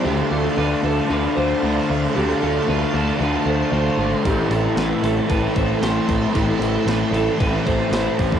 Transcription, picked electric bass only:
X:1
M:4/4
L:1/8
Q:1/4=114
K:Ddor
V:1 name="Picked electric bass" clef=bass
D,, D,, D,, D,, D,, D,, D,, D,, | D,, D,, D,, D,, D,, D,, D,, _A,,, | A,,, A,,, A,,, A,,, A,,, A,,, A,,, A,,, | A,,, A,,, A,,, A,,, A,,, A,,, A,,, A,,, |]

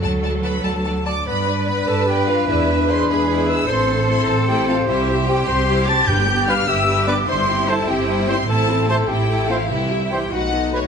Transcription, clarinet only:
X:1
M:6/8
L:1/8
Q:3/8=100
K:Dlyd
V:1 name="Clarinet"
z2 B A2 d | [K:Gmix] B2 B A G F | E2 c B2 e | c2 c A G F |
E2 G c2 a | g2 f e2 d | c2 A G2 c | A2 A G2 F |
E2 G ^D3 |]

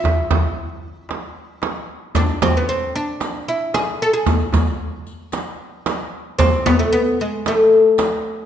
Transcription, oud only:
X:1
M:4/4
L:1/16
Q:1/4=113
K:none
V:1 name="Oud"
E12- E2 z2 | D2 C B, C2 D4 E2 ^G2 A G- | ^G12- G2 z2 | C2 B, A, B,2 ^G,2 A,8 |]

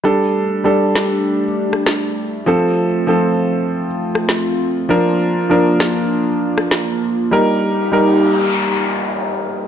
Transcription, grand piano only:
X:1
M:4/4
L:1/16
Q:"Swing 16ths" 1/4=99
K:Gm
V:1 name="Grand piano"
[G,DA]2 z2 [G,DA]4- [G,DA] z6 z | [F,CA]2 z2 [F,CA]4- [F,CA] z6 z | [F,DB]2 z2 [F,DB]4- [F,DB] z6 z | [G,EB]2 z2 [G,EB]4- [G,EB] z6 z |]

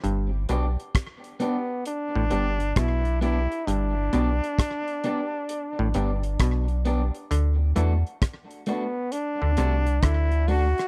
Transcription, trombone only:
X:1
M:4/4
L:1/8
Q:"Swing 16ths" 1/4=66
K:G
V:1 name="Trombone"
z3 B, D2 E E | D6- D z | z3 B, D2 E F |]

